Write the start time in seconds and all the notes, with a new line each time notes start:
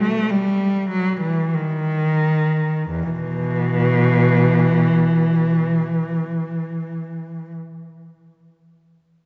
0.01 A3
0.31 G3
0.91 F#3
1.21 E3
1.54 D#3
2.89 E2
3.10 B2 E3